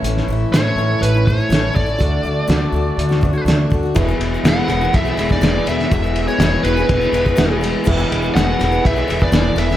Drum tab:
CC |----------------|----------------|----------------|----------------|
RD |----------------|----------------|x-x-x-x-x-x-x-x-|x-x-x-x-x-x-x-x-|
HH |x---x---x---x---|x---x---x---x---|----------------|----------------|
SD |-o--o-------o---|----o----o--o---|----o------oo--o|----o-------o---|
BD |----------o---o-|o---------o---o-|o-------o--o----|o-------o--o----|

CC |x---------------|
RD |--x-x-x-x-x-x-x-|
HH |----------------|
SD |----o-o-----o--o|
BD |o-------o--o----|